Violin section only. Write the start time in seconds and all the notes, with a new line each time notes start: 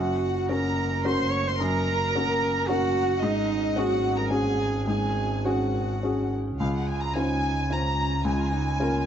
Already playing: F#5
0.50 A#5
1.05 C6
1.33 C#6
1.48 C6
1.60 A#5
2.69 F#5
3.22 D#5
3.76 F#5
4.16 A#5
4.30 G#5
4.87 G#5
5.46 F#5
6.59 F5
6.75 F#5
6.87 G#5
7.02 A#5
7.15 G#5
7.71 A#5
8.26 G#5